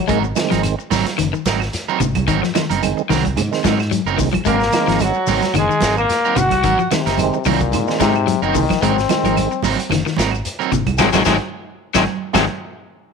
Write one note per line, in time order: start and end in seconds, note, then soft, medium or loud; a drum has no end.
0.00 0.20 F#3 loud
0.08 0.31 G#1 medium
0.08 0.19 D#3 medium
0.08 0.24 F#3 medium
0.08 0.24 G#3 medium
0.08 0.19 G#3 medium
0.08 0.19 A#3 medium
0.08 0.23 D#4 loud
0.08 0.23 A#4 loud
0.08 muted clean electric guitar stroke loud
0.08 kick loud
0.08 closed hi-hat medium
0.08 shekere medium
0.24 muted clean electric guitar stroke soft
0.24 shekere soft
0.35 0.75 D#3 medium
0.35 0.76 G#3 medium
0.35 0.76 C4 loud
0.35 muted clean electric guitar stroke soft
0.35 snare medium
0.35 closed hi-hat soft
0.35 high conga medium
0.35 claves medium
0.35 shekere medium
0.50 0.73 G#1 medium
0.50 0.67 F3 medium
0.50 0.62 C4 medium
0.50 0.62 D#4 medium
0.50 0.62 A#4 medium
0.50 snare soft
0.50 closed hi-hat medium
0.50 high conga medium
0.50 shekere soft
0.63 muted clean electric guitar stroke soft
0.63 closed hi-hat medium
0.63 claves medium
0.63 shekere medium
0.79 muted clean electric guitar stroke soft
0.79 shekere soft
0.90 1.03 G#1 medium
0.90 1.06 F#3 loud
0.90 1.06 C4 loud
0.90 1.06 D#4 loud
0.90 1.05 A#4 loud
0.90 snare soft
0.90 open hi-hat medium
0.90 high conga medium
0.90 low conga medium
0.90 shekere medium
1.06 muted clean electric guitar stroke soft
1.06 snare soft
1.06 closed hi-hat soft
1.06 shekere soft
1.18 1.31 F#1 medium
1.18 1.27 D#3 medium
1.18 closed hi-hat medium
1.18 claves medium
1.18 shekere medium
1.33 1.49 D#3 medium
1.33 muted clean electric guitar stroke medium
1.33 shekere soft
1.46 1.68 G#1 medium
1.46 1.61 F#3 medium
1.46 1.60 C4 medium
1.46 1.60 D#4 medium
1.46 1.60 A#4 medium
1.46 kick medium
1.46 snare medium
1.46 closed hi-hat medium
1.46 high conga medium
1.46 shekere medium
1.60 muted clean electric guitar stroke soft
1.60 snare soft
1.60 claves medium
1.60 shekere soft
1.73 snare soft
1.73 closed hi-hat medium
1.73 shekere medium
1.88 1.99 F#3 medium
1.88 1.99 C4 medium
1.88 1.99 D#4 medium
1.88 2.00 A#4 medium
1.88 shekere soft
2.00 2.12 G#1 medium
2.00 2.16 C3 medium
2.00 muted clean electric guitar stroke soft
2.00 kick medium
2.00 closed hi-hat medium
2.00 low conga medium
2.00 shekere medium
2.15 2.25 C2 medium
2.15 kick medium
2.15 closed hi-hat soft
2.15 high conga medium
2.15 claves medium
2.15 shekere soft
2.27 2.40 G#1 medium
2.27 2.36 D#3 medium
2.27 2.42 F#3 medium
2.27 2.42 C4 medium
2.27 2.41 D#4 medium
2.27 2.41 A#4 medium
2.27 kick loud
2.27 closed hi-hat medium
2.27 shekere medium
2.42 2.50 F3 medium
2.42 muted clean electric guitar stroke medium
2.42 snare soft
2.42 shekere soft
2.54 2.65 D#3 medium
2.54 2.71 D#3 medium
2.54 2.65 G#3 medium
2.54 2.65 C4 medium
2.54 muted clean electric guitar stroke medium
2.54 muted fingered electric bass stroke soft
2.54 snare medium
2.54 closed hi-hat medium
2.54 high conga loud
2.54 claves medium
2.54 shekere medium
2.70 2.92 F#1 medium
2.70 2.81 C4 medium
2.70 2.82 D#4 medium
2.70 2.82 A#4 medium
2.70 closed hi-hat medium
2.70 high conga medium
2.70 shekere soft
2.82 3.02 D#3 medium
2.82 3.02 G#3 medium
2.82 3.02 C4 loud
2.82 muted clean electric guitar stroke soft
2.82 closed hi-hat medium
2.82 high conga medium
2.82 claves medium
2.82 shekere medium
2.97 muted clean electric guitar stroke soft
2.97 shekere soft
3.09 3.38 C2 medium
3.09 3.26 D#3 medium
3.09 3.24 F#3 loud
3.09 3.24 C4 medium
3.09 3.24 A#4 loud
3.09 muted clean electric guitar stroke loud
3.09 snare soft
3.09 open hi-hat medium
3.09 high conga medium
3.09 low conga medium
3.09 shekere medium
3.25 muted clean electric guitar stroke soft
3.25 kick medium
3.25 closed hi-hat soft
3.25 high conga medium
3.25 shekere soft
3.36 3.49 G#2 loud
3.36 3.42 G#3 medium
3.36 3.42 C4 loud
3.36 closed hi-hat medium
3.36 low conga medium
3.36 claves medium
3.36 shekere medium
3.51 3.75 D#3 medium
3.51 3.76 G#3 medium
3.51 3.76 C4 medium
3.51 muted clean electric guitar stroke soft
3.51 snare soft
3.51 shekere soft
3.64 3.98 G#2 medium
3.64 3.79 F#3 medium
3.64 3.80 G#3 medium
3.64 3.79 C4 medium
3.64 3.79 D#4 medium
3.64 3.79 A#4 medium
3.64 kick medium
3.64 snare medium
3.64 closed hi-hat medium
3.64 high conga loud
3.64 shekere medium
3.79 muted clean electric guitar stroke soft
3.79 snare soft
3.79 claves medium
3.79 shekere soft
3.91 4.07 F#3 medium
3.91 closed hi-hat medium
3.91 shekere medium
4.05 4.16 F#1 medium
4.05 4.18 F#3 medium
4.05 4.18 C4 medium
4.05 4.18 D#4 medium
4.05 4.19 A#4 medium
4.05 shekere soft
4.18 4.31 C2 medium
4.18 4.27 D#3 medium
4.18 4.29 D#3 medium
4.18 4.29 G#3 medium
4.18 4.29 C4 medium
4.18 muted clean electric guitar stroke soft
4.18 kick medium
4.18 open hi-hat medium
4.18 low conga loud
4.18 shekere medium
4.33 4.40 F3 medium
4.33 kick medium
4.33 closed hi-hat medium
4.33 high conga medium
4.33 claves medium
4.33 shekere soft
4.45 4.68 G#1 medium
4.45 4.56 D#3 medium
4.45 4.61 F#3 medium
4.45 4.61 G#3 medium
4.45 4.57 G#3 medium
4.45 5.04 A#3 loud
4.45 4.60 C4 medium
4.45 4.57 C4 medium
4.45 5.02 A#4 medium
4.45 4.60 A#4 medium
4.45 muted clean electric guitar stroke medium
4.45 kick medium
4.45 closed hi-hat medium
4.45 shekere medium
4.61 muted clean electric guitar stroke soft
4.61 snare soft
4.61 shekere soft
4.72 5.13 D#3 medium
4.72 5.13 G#3 medium
4.72 5.13 C4 medium
4.72 muted clean electric guitar stroke soft
4.72 snare medium
4.72 closed hi-hat medium
4.72 high conga medium
4.72 claves medium
4.72 shekere medium
4.87 5.10 G#1 medium
4.87 5.04 F3 medium
4.87 5.00 C4 soft
4.87 5.01 D#4 medium
4.87 5.01 A#4 medium
4.87 snare soft
4.87 closed hi-hat medium
4.87 shekere soft
4.99 5.56 F#3 medium
4.99 5.55 F#4 medium
4.99 muted clean electric guitar stroke soft
4.99 closed hi-hat medium
4.99 high conga medium
4.99 claves medium
4.99 shekere medium
5.14 muted clean electric guitar stroke soft
5.14 shekere soft
5.27 5.40 G#1 loud
5.27 5.43 F#3 medium
5.27 5.43 C4 medium
5.27 5.42 D#4 medium
5.27 5.42 A#4 medium
5.27 open hi-hat medium
5.27 high conga medium
5.27 low conga medium
5.27 shekere medium
5.42 muted clean electric guitar stroke soft
5.42 snare soft
5.42 closed hi-hat soft
5.42 high conga medium
5.42 shekere soft
5.54 5.67 F#1 loud
5.54 5.64 D#3 medium
5.54 5.95 G#3 medium
5.54 5.95 G#4 medium
5.54 closed hi-hat medium
5.54 low conga medium
5.54 claves medium
5.54 shekere medium
5.69 5.85 D#3 medium
5.69 muted clean electric guitar stroke soft
5.69 shekere soft
5.81 6.04 G#1 medium
5.81 5.97 F#3 medium
5.81 5.97 C4 medium
5.81 5.97 D#4 medium
5.81 5.97 A#4 medium
5.81 kick medium
5.81 snare medium
5.81 closed hi-hat medium
5.81 high conga medium
5.81 shekere medium
5.98 6.39 A#3 loud
5.98 6.42 A#4 medium
5.98 muted clean electric guitar stroke soft
5.98 claves medium
5.98 shekere soft
6.10 snare soft
6.10 closed hi-hat medium
6.10 shekere loud
6.25 6.36 F#3 medium
6.25 6.36 C4 medium
6.25 6.37 D#4 medium
6.25 6.37 A#4 medium
6.25 shekere soft
6.36 6.49 G#1 medium
6.36 6.53 C3 medium
6.36 6.92 F#4 loud
6.36 muted clean electric guitar stroke soft
6.36 kick medium
6.36 closed hi-hat soft
6.36 low conga loud
6.36 shekere medium
6.40 6.93 F#5 medium
6.50 6.61 C2 medium
6.50 kick medium
6.50 closed hi-hat medium
6.50 high conga medium
6.50 claves medium
6.50 shekere soft
6.63 6.76 G#1 loud
6.63 6.73 D#3 medium
6.63 6.79 F#3 medium
6.63 6.79 A#4 medium
6.63 muted clean electric guitar stroke medium
6.63 kick medium
6.63 closed hi-hat medium
6.63 shekere medium
6.79 6.86 F3 medium
6.79 muted clean electric guitar stroke soft
6.79 shekere soft
6.91 7.48 C3 medium
6.91 7.01 D#3 medium
6.91 7.08 D#3 medium
6.91 7.02 G#3 medium
6.91 7.02 C4 medium
6.91 muted clean electric guitar stroke soft
6.91 muted fingered electric bass stroke soft
6.91 snare medium
6.91 closed hi-hat medium
6.91 high conga medium
6.91 claves medium
6.91 shekere medium
7.06 7.28 F#1 medium
7.06 7.18 C4 soft
7.06 7.18 D#4 medium
7.06 7.18 A#4 medium
7.06 snare soft
7.06 closed hi-hat medium
7.06 shekere soft
7.18 7.38 D#3 medium
7.18 7.38 G#3 medium
7.18 7.39 C4 loud
7.18 muted clean electric guitar stroke soft
7.18 closed hi-hat medium
7.18 high conga medium
7.18 claves medium
7.18 shekere medium
7.33 muted clean electric guitar stroke soft
7.33 shekere soft
7.45 7.73 C2 loud
7.45 8.01 A#2 medium
7.45 7.62 D#3 medium
7.45 7.61 F#3 loud
7.45 7.61 C4 loud
7.45 7.60 D#4 loud
7.45 7.60 A#4 loud
7.45 open hi-hat medium
7.45 high conga medium
7.45 low conga loud
7.45 shekere medium
7.61 muted clean electric guitar stroke soft
7.61 kick medium
7.61 closed hi-hat medium
7.61 shekere soft
7.72 7.84 G#2 loud
7.72 7.78 G#3 loud
7.72 7.78 C4 loud
7.72 closed hi-hat medium
7.72 low conga medium
7.72 claves medium
7.72 shekere medium
7.87 8.11 D#3 medium
7.87 8.12 G#3 medium
7.87 8.12 C4 medium
7.87 muted clean electric guitar stroke soft
7.87 snare soft
7.87 shekere soft
7.99 8.34 G#2 loud
7.99 8.44 C3 loud
7.99 8.15 F#3 medium
7.99 8.16 G#3 medium
7.99 8.15 C4 medium
7.99 8.14 D#4 medium
7.99 8.14 A#4 medium
7.99 kick medium
7.99 snare medium
7.99 closed hi-hat medium
7.99 high conga loud
7.99 shekere medium
8.15 muted clean electric guitar stroke medium
8.15 claves medium
8.15 shekere soft
8.27 8.43 F#3 medium
8.27 closed hi-hat medium
8.27 shekere medium
8.42 8.52 F#1 medium
8.42 8.84 D#3 loud
8.42 8.54 F#3 medium
8.42 8.55 C4 medium
8.42 8.55 D#4 medium
8.42 8.55 A#4 medium
8.42 shekere soft
8.55 8.67 C2 medium
8.55 8.63 D#3 medium
8.55 8.65 D#3 medium
8.55 8.65 G#3 medium
8.55 8.65 C4 medium
8.55 muted clean electric guitar stroke soft
8.55 kick medium
8.55 open hi-hat medium
8.55 low conga loud
8.55 shekere medium
8.70 8.77 F3 medium
8.70 kick medium
8.70 snare soft
8.70 closed hi-hat medium
8.70 high conga medium
8.70 claves medium
8.70 shekere soft
8.82 9.05 G#1 loud
8.82 8.92 D#3 medium
8.82 8.97 F#3 medium
8.82 8.98 G#3 medium
8.82 8.93 G#3 medium
8.82 8.97 C4 medium
8.82 9.91 C4 medium
8.82 8.93 C4 medium
8.82 8.97 D#4 loud
8.82 8.96 A#4 loud
8.82 kick loud
8.82 closed hi-hat medium
8.82 shekere medium
8.98 muted clean electric guitar stroke soft
8.98 snare soft
8.98 shekere soft
9.09 9.49 D#3 medium
9.09 9.49 G#3 medium
9.09 9.49 C4 loud
9.09 muted clean electric guitar stroke soft
9.09 snare medium
9.09 closed hi-hat medium
9.09 high conga loud
9.09 claves medium
9.09 shekere medium
9.23 9.46 G#1 medium
9.23 9.41 F3 medium
9.23 9.36 C4 medium
9.23 9.36 D#4 medium
9.23 9.36 A#4 medium
9.23 closed hi-hat medium
9.23 high conga medium
9.23 shekere soft
9.37 muted clean electric guitar stroke soft
9.37 closed hi-hat medium
9.37 high conga medium
9.37 claves medium
9.37 shekere medium
9.51 muted clean electric guitar stroke soft
9.51 shekere soft
9.63 9.75 G#1 medium
9.63 9.79 F#3 medium
9.63 9.78 C4 loud
9.63 9.78 D#4 loud
9.63 9.77 A#4 loud
9.63 open hi-hat medium
9.63 high conga medium
9.63 low conga medium
9.63 shekere medium
9.79 muted clean electric guitar stroke medium
9.79 closed hi-hat soft
9.79 shekere soft
9.90 10.02 F#1 loud
9.90 10.00 D#3 medium
9.90 snare soft
9.90 closed hi-hat medium
9.90 low conga medium
9.90 claves medium
9.90 shekere medium
10.06 10.22 D#3 medium
10.06 muted clean electric guitar stroke soft
10.06 snare soft
10.06 shekere soft
10.16 10.40 G#1 medium
10.16 10.33 F#3 medium
10.16 10.31 C4 medium
10.16 10.32 D#4 medium
10.16 10.31 A#4 medium
10.16 kick medium
10.16 snare medium
10.16 closed hi-hat medium
10.16 high conga medium
10.16 shekere medium
10.32 muted clean electric guitar stroke soft
10.32 claves medium
10.32 shekere soft
10.45 closed hi-hat medium
10.45 shekere medium
10.59 10.71 F#3 medium
10.59 10.71 C4 medium
10.59 10.71 D#4 medium
10.59 10.71 A#4 medium
10.59 shekere soft
10.72 10.84 G#1 medium
10.72 10.88 C3 medium
10.72 muted clean electric guitar stroke soft
10.72 kick medium
10.72 closed hi-hat soft
10.72 low conga medium
10.72 shekere medium
10.87 10.97 C2 medium
10.87 kick medium
10.87 closed hi-hat soft
10.87 high conga medium
10.87 claves medium
10.87 shekere soft
10.98 11.10 G#1 medium
10.98 11.06 C3 medium
10.98 11.09 D#3 medium
10.98 11.08 F#3 loud
10.98 11.09 F#3 medium
10.98 11.08 G#3 loud
10.98 11.09 G#3 medium
10.98 11.08 C4 loud
10.98 11.09 D#4 medium
10.98 11.09 F#4 loud
10.98 11.09 G#4 medium
10.98 kick medium
10.98 snare medium
10.98 high conga medium
10.98 claves loud
10.98 shekere medium
11.12 11.23 G#1 medium
11.12 11.20 C3 loud
11.12 11.22 D#3 medium
11.12 11.21 F#3 medium
11.12 11.22 F#3 loud
11.12 11.21 G#3 medium
11.12 11.22 G#3 medium
11.12 11.21 C4 medium
11.12 11.22 D#4 medium
11.12 11.22 F#4 medium
11.12 11.22 G#4 medium
11.12 kick medium
11.12 snare medium
11.12 high conga loud
11.12 claves medium
11.12 shekere medium
11.25 11.37 G#1 loud
11.25 11.33 C3 medium
11.25 11.36 D#3 loud
11.25 11.35 F#3 loud
11.25 11.36 F#3 medium
11.25 11.35 G#3 medium
11.25 11.36 G#3 medium
11.25 11.35 C4 medium
11.25 11.36 D#4 loud
11.25 11.36 F#4 medium
11.25 11.36 G#4 loud
11.25 kick medium
11.25 snare medium
11.25 high conga medium
11.25 claves medium
11.25 shekere loud
11.95 12.05 G#1 medium
11.95 12.01 C3 medium
11.95 12.03 D#3 medium
11.95 12.03 F#3 medium
11.95 12.03 F#3 loud
11.95 12.03 G#3 medium
11.95 12.03 C4 loud
11.95 12.03 D#4 medium
11.95 12.03 F#4 medium
11.95 12.03 G#4 medium
11.95 kick medium
11.95 snare medium
11.95 high conga loud
11.95 claves loud
11.95 shekere loud
12.33 12.46 G#1 medium
12.33 12.42 C3 loud
12.33 12.44 D#3 medium
12.33 12.44 F#3 medium
12.33 12.44 G#3 medium
12.33 12.44 C4 medium
12.33 12.44 D#4 medium
12.33 12.44 F#4 medium
12.33 12.44 G#4 medium
12.33 kick medium
12.33 snare medium
12.33 high conga loud
12.33 claves loud
12.33 shekere loud